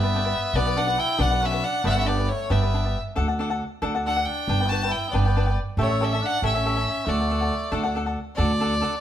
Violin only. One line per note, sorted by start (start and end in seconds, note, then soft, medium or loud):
0.00 0.58 E5 medium
0.56 0.79 D5 medium
0.78 1.01 F#5 medium
1.00 1.23 G5 loud
1.22 1.47 F#5 medium
1.46 1.66 E5 loud
1.64 1.85 F#5 medium
1.87 1.91 E5 medium
1.87 2.00 F#5 medium
1.98 2.08 E5 medium
2.07 2.30 D5 medium
2.29 2.53 C#5 medium
2.52 3.01 E5 medium
4.07 4.27 F#5 medium
4.25 4.71 G5 medium
4.69 4.93 A5 medium
4.91 5.13 G5 medium
5.12 5.56 D5 medium
5.81 6.06 C#5 medium
6.05 6.27 E5 medium
6.25 6.44 F#5 loud
6.45 7.10 E5 medium
7.09 7.96 D5 medium
8.36 9.01 D5 medium